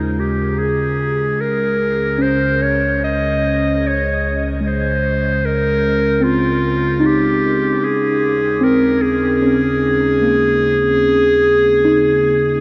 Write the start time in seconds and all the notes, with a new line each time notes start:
Already playing: D#2 C#3 G#3 D#4 F4 G#4
0.20 G4
0.59 G#4
1.36 C#2
1.41 A#4
2.18 C#4 C5
2.62 C#5
3.04 D#5
3.87 C#5
4.60 G#3
4.66 C5
5.45 A#4
6.20 C4 F4
7.00 D#4
7.06 G4
7.80 D#2
7.85 G#4
8.60 C4 A#4
9.02 G#4
9.42 C#4
10.22 A#3
11.84 D#4